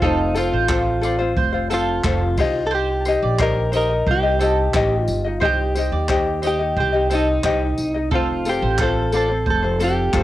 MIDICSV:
0, 0, Header, 1, 6, 480
1, 0, Start_track
1, 0, Tempo, 674916
1, 12, Time_signature, 4, 2, 24, 8
1, 7278, End_track
2, 0, Start_track
2, 0, Title_t, "Mandolin"
2, 0, Program_c, 0, 25
2, 16, Note_on_c, 0, 69, 99
2, 128, Note_off_c, 0, 69, 0
2, 379, Note_on_c, 0, 72, 70
2, 604, Note_off_c, 0, 72, 0
2, 737, Note_on_c, 0, 74, 71
2, 849, Note_off_c, 0, 74, 0
2, 975, Note_on_c, 0, 72, 69
2, 1202, Note_off_c, 0, 72, 0
2, 1211, Note_on_c, 0, 69, 79
2, 1326, Note_off_c, 0, 69, 0
2, 1927, Note_on_c, 0, 72, 103
2, 2044, Note_off_c, 0, 72, 0
2, 2293, Note_on_c, 0, 74, 68
2, 2522, Note_off_c, 0, 74, 0
2, 2656, Note_on_c, 0, 75, 76
2, 2769, Note_off_c, 0, 75, 0
2, 2896, Note_on_c, 0, 72, 77
2, 3124, Note_off_c, 0, 72, 0
2, 3134, Note_on_c, 0, 69, 78
2, 3248, Note_off_c, 0, 69, 0
2, 3850, Note_on_c, 0, 72, 101
2, 3966, Note_off_c, 0, 72, 0
2, 4212, Note_on_c, 0, 74, 66
2, 4441, Note_off_c, 0, 74, 0
2, 4573, Note_on_c, 0, 75, 66
2, 4688, Note_off_c, 0, 75, 0
2, 4817, Note_on_c, 0, 72, 69
2, 5044, Note_off_c, 0, 72, 0
2, 5054, Note_on_c, 0, 69, 78
2, 5168, Note_off_c, 0, 69, 0
2, 5768, Note_on_c, 0, 69, 99
2, 5885, Note_off_c, 0, 69, 0
2, 6132, Note_on_c, 0, 72, 70
2, 6360, Note_off_c, 0, 72, 0
2, 6496, Note_on_c, 0, 74, 75
2, 6609, Note_off_c, 0, 74, 0
2, 6730, Note_on_c, 0, 72, 72
2, 6959, Note_off_c, 0, 72, 0
2, 6969, Note_on_c, 0, 69, 72
2, 7085, Note_off_c, 0, 69, 0
2, 7278, End_track
3, 0, Start_track
3, 0, Title_t, "Clean electric guitar"
3, 0, Program_c, 1, 27
3, 26, Note_on_c, 1, 63, 77
3, 243, Note_off_c, 1, 63, 0
3, 267, Note_on_c, 1, 65, 83
3, 952, Note_off_c, 1, 65, 0
3, 1237, Note_on_c, 1, 65, 104
3, 1894, Note_off_c, 1, 65, 0
3, 1897, Note_on_c, 1, 69, 80
3, 1940, Note_off_c, 1, 69, 0
3, 1955, Note_on_c, 1, 67, 96
3, 2433, Note_off_c, 1, 67, 0
3, 2436, Note_on_c, 1, 70, 97
3, 2649, Note_off_c, 1, 70, 0
3, 2679, Note_on_c, 1, 70, 111
3, 2914, Note_off_c, 1, 70, 0
3, 2922, Note_on_c, 1, 67, 105
3, 3584, Note_off_c, 1, 67, 0
3, 3584, Note_on_c, 1, 65, 105
3, 3870, Note_off_c, 1, 65, 0
3, 3878, Note_on_c, 1, 67, 94
3, 4595, Note_off_c, 1, 67, 0
3, 4604, Note_on_c, 1, 67, 93
3, 4829, Note_off_c, 1, 67, 0
3, 4838, Note_on_c, 1, 67, 93
3, 5073, Note_off_c, 1, 67, 0
3, 5084, Note_on_c, 1, 63, 91
3, 5760, Note_off_c, 1, 63, 0
3, 5799, Note_on_c, 1, 65, 84
3, 6033, Note_off_c, 1, 65, 0
3, 6041, Note_on_c, 1, 67, 88
3, 6274, Note_off_c, 1, 67, 0
3, 6278, Note_on_c, 1, 69, 87
3, 6510, Note_off_c, 1, 69, 0
3, 6519, Note_on_c, 1, 69, 91
3, 6751, Note_off_c, 1, 69, 0
3, 6759, Note_on_c, 1, 69, 91
3, 6993, Note_off_c, 1, 69, 0
3, 6998, Note_on_c, 1, 67, 99
3, 7278, Note_off_c, 1, 67, 0
3, 7278, End_track
4, 0, Start_track
4, 0, Title_t, "Ukulele"
4, 0, Program_c, 2, 24
4, 13, Note_on_c, 2, 69, 77
4, 20, Note_on_c, 2, 60, 76
4, 25, Note_on_c, 2, 65, 87
4, 31, Note_on_c, 2, 72, 90
4, 237, Note_off_c, 2, 69, 0
4, 243, Note_off_c, 2, 72, 0
4, 246, Note_on_c, 2, 69, 64
4, 247, Note_off_c, 2, 60, 0
4, 251, Note_off_c, 2, 65, 0
4, 255, Note_on_c, 2, 60, 68
4, 260, Note_on_c, 2, 65, 66
4, 269, Note_on_c, 2, 72, 69
4, 476, Note_off_c, 2, 69, 0
4, 482, Note_off_c, 2, 60, 0
4, 482, Note_off_c, 2, 72, 0
4, 485, Note_on_c, 2, 69, 75
4, 488, Note_off_c, 2, 65, 0
4, 491, Note_on_c, 2, 60, 81
4, 497, Note_on_c, 2, 65, 87
4, 501, Note_on_c, 2, 72, 86
4, 713, Note_off_c, 2, 69, 0
4, 719, Note_off_c, 2, 72, 0
4, 721, Note_off_c, 2, 60, 0
4, 721, Note_on_c, 2, 69, 62
4, 726, Note_off_c, 2, 65, 0
4, 729, Note_on_c, 2, 60, 62
4, 735, Note_on_c, 2, 65, 71
4, 746, Note_on_c, 2, 72, 71
4, 835, Note_off_c, 2, 72, 0
4, 840, Note_off_c, 2, 69, 0
4, 843, Note_on_c, 2, 72, 61
4, 846, Note_off_c, 2, 65, 0
4, 851, Note_off_c, 2, 60, 0
4, 854, Note_on_c, 2, 65, 53
4, 864, Note_on_c, 2, 60, 47
4, 1076, Note_off_c, 2, 72, 0
4, 1085, Note_on_c, 2, 72, 58
4, 1086, Note_off_c, 2, 65, 0
4, 1095, Note_on_c, 2, 65, 51
4, 1097, Note_off_c, 2, 60, 0
4, 1106, Note_on_c, 2, 60, 51
4, 1205, Note_off_c, 2, 60, 0
4, 1205, Note_off_c, 2, 72, 0
4, 1207, Note_on_c, 2, 69, 62
4, 1210, Note_off_c, 2, 65, 0
4, 1213, Note_on_c, 2, 60, 61
4, 1219, Note_on_c, 2, 65, 62
4, 1230, Note_on_c, 2, 72, 65
4, 1443, Note_off_c, 2, 69, 0
4, 1446, Note_off_c, 2, 60, 0
4, 1448, Note_off_c, 2, 72, 0
4, 1451, Note_on_c, 2, 69, 70
4, 1453, Note_off_c, 2, 65, 0
4, 1454, Note_on_c, 2, 60, 81
4, 1461, Note_on_c, 2, 65, 81
4, 1465, Note_on_c, 2, 72, 83
4, 1686, Note_off_c, 2, 72, 0
4, 1691, Note_off_c, 2, 69, 0
4, 1694, Note_off_c, 2, 60, 0
4, 1694, Note_on_c, 2, 72, 74
4, 1698, Note_off_c, 2, 65, 0
4, 1700, Note_on_c, 2, 63, 81
4, 1704, Note_on_c, 2, 67, 86
4, 1711, Note_on_c, 2, 75, 81
4, 2169, Note_off_c, 2, 72, 0
4, 2172, Note_on_c, 2, 72, 66
4, 2173, Note_off_c, 2, 63, 0
4, 2179, Note_off_c, 2, 67, 0
4, 2181, Note_on_c, 2, 63, 69
4, 2183, Note_off_c, 2, 75, 0
4, 2190, Note_on_c, 2, 67, 67
4, 2193, Note_on_c, 2, 75, 61
4, 2401, Note_off_c, 2, 72, 0
4, 2408, Note_off_c, 2, 63, 0
4, 2410, Note_on_c, 2, 72, 83
4, 2413, Note_off_c, 2, 67, 0
4, 2416, Note_on_c, 2, 63, 74
4, 2418, Note_off_c, 2, 75, 0
4, 2421, Note_on_c, 2, 67, 86
4, 2427, Note_on_c, 2, 75, 97
4, 2636, Note_off_c, 2, 72, 0
4, 2642, Note_off_c, 2, 75, 0
4, 2644, Note_off_c, 2, 63, 0
4, 2644, Note_on_c, 2, 72, 63
4, 2653, Note_off_c, 2, 67, 0
4, 2653, Note_on_c, 2, 63, 61
4, 2662, Note_on_c, 2, 67, 62
4, 2667, Note_on_c, 2, 75, 65
4, 2761, Note_off_c, 2, 75, 0
4, 2769, Note_off_c, 2, 72, 0
4, 2769, Note_on_c, 2, 75, 50
4, 2773, Note_off_c, 2, 67, 0
4, 2774, Note_off_c, 2, 63, 0
4, 2782, Note_on_c, 2, 67, 50
4, 2791, Note_off_c, 2, 67, 0
4, 2793, Note_on_c, 2, 63, 41
4, 3000, Note_off_c, 2, 75, 0
4, 3008, Note_on_c, 2, 75, 61
4, 3020, Note_off_c, 2, 63, 0
4, 3020, Note_on_c, 2, 67, 56
4, 3029, Note_on_c, 2, 63, 44
4, 3121, Note_off_c, 2, 75, 0
4, 3122, Note_off_c, 2, 63, 0
4, 3123, Note_on_c, 2, 72, 58
4, 3131, Note_off_c, 2, 67, 0
4, 3131, Note_on_c, 2, 63, 64
4, 3140, Note_on_c, 2, 67, 70
4, 3147, Note_on_c, 2, 75, 73
4, 3359, Note_off_c, 2, 72, 0
4, 3365, Note_off_c, 2, 67, 0
4, 3366, Note_off_c, 2, 63, 0
4, 3367, Note_on_c, 2, 72, 80
4, 3375, Note_on_c, 2, 63, 74
4, 3377, Note_off_c, 2, 75, 0
4, 3381, Note_on_c, 2, 67, 81
4, 3385, Note_on_c, 2, 75, 88
4, 3722, Note_off_c, 2, 75, 0
4, 3727, Note_off_c, 2, 67, 0
4, 3730, Note_on_c, 2, 75, 53
4, 3731, Note_off_c, 2, 72, 0
4, 3735, Note_off_c, 2, 63, 0
4, 3742, Note_on_c, 2, 67, 50
4, 3749, Note_off_c, 2, 67, 0
4, 3752, Note_on_c, 2, 63, 45
4, 3838, Note_off_c, 2, 63, 0
4, 3839, Note_off_c, 2, 75, 0
4, 3841, Note_on_c, 2, 72, 72
4, 3846, Note_on_c, 2, 63, 77
4, 3852, Note_on_c, 2, 67, 83
4, 3859, Note_on_c, 2, 75, 80
4, 4082, Note_off_c, 2, 72, 0
4, 4088, Note_off_c, 2, 75, 0
4, 4090, Note_off_c, 2, 63, 0
4, 4091, Note_on_c, 2, 72, 56
4, 4093, Note_off_c, 2, 67, 0
4, 4101, Note_on_c, 2, 63, 61
4, 4104, Note_on_c, 2, 67, 63
4, 4113, Note_on_c, 2, 75, 60
4, 4318, Note_off_c, 2, 72, 0
4, 4324, Note_off_c, 2, 67, 0
4, 4326, Note_off_c, 2, 63, 0
4, 4327, Note_on_c, 2, 72, 81
4, 4334, Note_off_c, 2, 75, 0
4, 4335, Note_on_c, 2, 63, 76
4, 4339, Note_on_c, 2, 67, 88
4, 4342, Note_on_c, 2, 75, 84
4, 4558, Note_off_c, 2, 72, 0
4, 4563, Note_off_c, 2, 75, 0
4, 4566, Note_off_c, 2, 63, 0
4, 4566, Note_on_c, 2, 72, 55
4, 4572, Note_off_c, 2, 67, 0
4, 4575, Note_on_c, 2, 63, 59
4, 4581, Note_on_c, 2, 67, 61
4, 4588, Note_on_c, 2, 75, 61
4, 4680, Note_off_c, 2, 75, 0
4, 4688, Note_on_c, 2, 75, 55
4, 4690, Note_off_c, 2, 67, 0
4, 4690, Note_off_c, 2, 72, 0
4, 4695, Note_off_c, 2, 63, 0
4, 4699, Note_on_c, 2, 67, 50
4, 4707, Note_off_c, 2, 67, 0
4, 4710, Note_on_c, 2, 63, 46
4, 4917, Note_off_c, 2, 75, 0
4, 4926, Note_on_c, 2, 75, 51
4, 4937, Note_on_c, 2, 67, 51
4, 4940, Note_off_c, 2, 63, 0
4, 4948, Note_on_c, 2, 63, 47
4, 5045, Note_off_c, 2, 75, 0
4, 5048, Note_on_c, 2, 72, 57
4, 5049, Note_off_c, 2, 63, 0
4, 5056, Note_off_c, 2, 67, 0
4, 5058, Note_on_c, 2, 63, 66
4, 5064, Note_on_c, 2, 67, 65
4, 5071, Note_on_c, 2, 75, 63
4, 5281, Note_off_c, 2, 72, 0
4, 5285, Note_off_c, 2, 63, 0
4, 5287, Note_off_c, 2, 67, 0
4, 5290, Note_on_c, 2, 72, 71
4, 5293, Note_off_c, 2, 75, 0
4, 5294, Note_on_c, 2, 63, 79
4, 5298, Note_on_c, 2, 67, 77
4, 5302, Note_on_c, 2, 75, 75
4, 5640, Note_off_c, 2, 75, 0
4, 5646, Note_off_c, 2, 67, 0
4, 5648, Note_on_c, 2, 75, 51
4, 5652, Note_off_c, 2, 72, 0
4, 5654, Note_off_c, 2, 63, 0
4, 5657, Note_on_c, 2, 67, 48
4, 5668, Note_off_c, 2, 67, 0
4, 5671, Note_on_c, 2, 63, 42
4, 5767, Note_off_c, 2, 75, 0
4, 5770, Note_on_c, 2, 69, 68
4, 5772, Note_off_c, 2, 63, 0
4, 5775, Note_on_c, 2, 60, 73
4, 5782, Note_on_c, 2, 65, 73
4, 5788, Note_on_c, 2, 72, 81
4, 6005, Note_off_c, 2, 69, 0
4, 6011, Note_off_c, 2, 72, 0
4, 6013, Note_on_c, 2, 69, 56
4, 6014, Note_off_c, 2, 60, 0
4, 6018, Note_off_c, 2, 65, 0
4, 6022, Note_on_c, 2, 60, 65
4, 6028, Note_on_c, 2, 65, 59
4, 6038, Note_on_c, 2, 72, 69
4, 6243, Note_off_c, 2, 69, 0
4, 6248, Note_off_c, 2, 72, 0
4, 6250, Note_off_c, 2, 60, 0
4, 6251, Note_on_c, 2, 69, 79
4, 6254, Note_off_c, 2, 65, 0
4, 6259, Note_on_c, 2, 60, 79
4, 6263, Note_on_c, 2, 65, 89
4, 6269, Note_on_c, 2, 72, 87
4, 6479, Note_off_c, 2, 69, 0
4, 6485, Note_off_c, 2, 60, 0
4, 6485, Note_off_c, 2, 72, 0
4, 6487, Note_on_c, 2, 69, 63
4, 6492, Note_off_c, 2, 65, 0
4, 6494, Note_on_c, 2, 60, 62
4, 6500, Note_on_c, 2, 65, 63
4, 6509, Note_on_c, 2, 72, 64
4, 6592, Note_off_c, 2, 72, 0
4, 6601, Note_on_c, 2, 72, 53
4, 6603, Note_off_c, 2, 65, 0
4, 6609, Note_off_c, 2, 60, 0
4, 6610, Note_off_c, 2, 69, 0
4, 6612, Note_on_c, 2, 65, 44
4, 6622, Note_off_c, 2, 65, 0
4, 6625, Note_on_c, 2, 60, 45
4, 6837, Note_off_c, 2, 72, 0
4, 6846, Note_on_c, 2, 72, 58
4, 6855, Note_off_c, 2, 60, 0
4, 6857, Note_on_c, 2, 65, 49
4, 6865, Note_off_c, 2, 65, 0
4, 6868, Note_on_c, 2, 60, 46
4, 6965, Note_off_c, 2, 60, 0
4, 6965, Note_on_c, 2, 69, 57
4, 6969, Note_off_c, 2, 72, 0
4, 6973, Note_on_c, 2, 60, 65
4, 6982, Note_on_c, 2, 65, 65
4, 6987, Note_on_c, 2, 72, 64
4, 7194, Note_off_c, 2, 69, 0
4, 7197, Note_off_c, 2, 60, 0
4, 7200, Note_off_c, 2, 72, 0
4, 7202, Note_off_c, 2, 65, 0
4, 7203, Note_on_c, 2, 69, 81
4, 7206, Note_on_c, 2, 60, 77
4, 7211, Note_on_c, 2, 65, 81
4, 7218, Note_on_c, 2, 72, 88
4, 7278, Note_off_c, 2, 60, 0
4, 7278, Note_off_c, 2, 65, 0
4, 7278, Note_off_c, 2, 69, 0
4, 7278, Note_off_c, 2, 72, 0
4, 7278, End_track
5, 0, Start_track
5, 0, Title_t, "Upright bass"
5, 0, Program_c, 3, 32
5, 14, Note_on_c, 3, 29, 95
5, 345, Note_off_c, 3, 29, 0
5, 371, Note_on_c, 3, 33, 85
5, 944, Note_off_c, 3, 33, 0
5, 973, Note_on_c, 3, 29, 97
5, 1425, Note_off_c, 3, 29, 0
5, 1452, Note_on_c, 3, 29, 95
5, 1674, Note_off_c, 3, 29, 0
5, 1692, Note_on_c, 3, 36, 79
5, 2265, Note_off_c, 3, 36, 0
5, 2293, Note_on_c, 3, 34, 87
5, 2866, Note_off_c, 3, 34, 0
5, 2893, Note_on_c, 3, 36, 99
5, 3345, Note_off_c, 3, 36, 0
5, 3371, Note_on_c, 3, 33, 103
5, 3593, Note_off_c, 3, 33, 0
5, 3614, Note_on_c, 3, 31, 86
5, 3835, Note_off_c, 3, 31, 0
5, 3854, Note_on_c, 3, 36, 94
5, 4186, Note_off_c, 3, 36, 0
5, 4209, Note_on_c, 3, 39, 85
5, 4783, Note_off_c, 3, 39, 0
5, 4813, Note_on_c, 3, 36, 104
5, 5265, Note_off_c, 3, 36, 0
5, 5291, Note_on_c, 3, 36, 94
5, 5513, Note_off_c, 3, 36, 0
5, 5534, Note_on_c, 3, 36, 75
5, 5755, Note_off_c, 3, 36, 0
5, 5774, Note_on_c, 3, 29, 94
5, 6105, Note_off_c, 3, 29, 0
5, 6133, Note_on_c, 3, 33, 92
5, 6704, Note_off_c, 3, 33, 0
5, 6727, Note_on_c, 3, 29, 97
5, 7181, Note_off_c, 3, 29, 0
5, 7207, Note_on_c, 3, 29, 101
5, 7278, Note_off_c, 3, 29, 0
5, 7278, End_track
6, 0, Start_track
6, 0, Title_t, "Drums"
6, 13, Note_on_c, 9, 36, 106
6, 85, Note_off_c, 9, 36, 0
6, 252, Note_on_c, 9, 54, 66
6, 324, Note_off_c, 9, 54, 0
6, 491, Note_on_c, 9, 39, 107
6, 493, Note_on_c, 9, 36, 108
6, 562, Note_off_c, 9, 39, 0
6, 564, Note_off_c, 9, 36, 0
6, 734, Note_on_c, 9, 54, 61
6, 805, Note_off_c, 9, 54, 0
6, 972, Note_on_c, 9, 36, 96
6, 1043, Note_off_c, 9, 36, 0
6, 1214, Note_on_c, 9, 54, 66
6, 1285, Note_off_c, 9, 54, 0
6, 1451, Note_on_c, 9, 36, 116
6, 1451, Note_on_c, 9, 39, 106
6, 1522, Note_off_c, 9, 36, 0
6, 1523, Note_off_c, 9, 39, 0
6, 1689, Note_on_c, 9, 54, 60
6, 1690, Note_on_c, 9, 49, 80
6, 1691, Note_on_c, 9, 36, 115
6, 1760, Note_off_c, 9, 54, 0
6, 1761, Note_off_c, 9, 49, 0
6, 1762, Note_off_c, 9, 36, 0
6, 2171, Note_on_c, 9, 54, 67
6, 2242, Note_off_c, 9, 54, 0
6, 2411, Note_on_c, 9, 39, 114
6, 2413, Note_on_c, 9, 36, 119
6, 2483, Note_off_c, 9, 39, 0
6, 2485, Note_off_c, 9, 36, 0
6, 2652, Note_on_c, 9, 54, 62
6, 2723, Note_off_c, 9, 54, 0
6, 2892, Note_on_c, 9, 36, 96
6, 2963, Note_off_c, 9, 36, 0
6, 3133, Note_on_c, 9, 54, 70
6, 3204, Note_off_c, 9, 54, 0
6, 3371, Note_on_c, 9, 36, 117
6, 3371, Note_on_c, 9, 39, 112
6, 3442, Note_off_c, 9, 36, 0
6, 3442, Note_off_c, 9, 39, 0
6, 3610, Note_on_c, 9, 54, 65
6, 3681, Note_off_c, 9, 54, 0
6, 3855, Note_on_c, 9, 36, 118
6, 3926, Note_off_c, 9, 36, 0
6, 4093, Note_on_c, 9, 54, 64
6, 4165, Note_off_c, 9, 54, 0
6, 4330, Note_on_c, 9, 39, 102
6, 4334, Note_on_c, 9, 36, 111
6, 4401, Note_off_c, 9, 39, 0
6, 4406, Note_off_c, 9, 36, 0
6, 4573, Note_on_c, 9, 54, 64
6, 4644, Note_off_c, 9, 54, 0
6, 4812, Note_on_c, 9, 36, 93
6, 4883, Note_off_c, 9, 36, 0
6, 5054, Note_on_c, 9, 54, 69
6, 5125, Note_off_c, 9, 54, 0
6, 5291, Note_on_c, 9, 36, 108
6, 5291, Note_on_c, 9, 39, 111
6, 5362, Note_off_c, 9, 36, 0
6, 5362, Note_off_c, 9, 39, 0
6, 5531, Note_on_c, 9, 54, 65
6, 5602, Note_off_c, 9, 54, 0
6, 5772, Note_on_c, 9, 36, 114
6, 5843, Note_off_c, 9, 36, 0
6, 6011, Note_on_c, 9, 54, 67
6, 6083, Note_off_c, 9, 54, 0
6, 6247, Note_on_c, 9, 39, 116
6, 6252, Note_on_c, 9, 36, 106
6, 6318, Note_off_c, 9, 39, 0
6, 6323, Note_off_c, 9, 36, 0
6, 6489, Note_on_c, 9, 54, 64
6, 6560, Note_off_c, 9, 54, 0
6, 6729, Note_on_c, 9, 36, 94
6, 6800, Note_off_c, 9, 36, 0
6, 6973, Note_on_c, 9, 54, 72
6, 7044, Note_off_c, 9, 54, 0
6, 7207, Note_on_c, 9, 39, 106
6, 7208, Note_on_c, 9, 36, 107
6, 7278, Note_off_c, 9, 36, 0
6, 7278, Note_off_c, 9, 39, 0
6, 7278, End_track
0, 0, End_of_file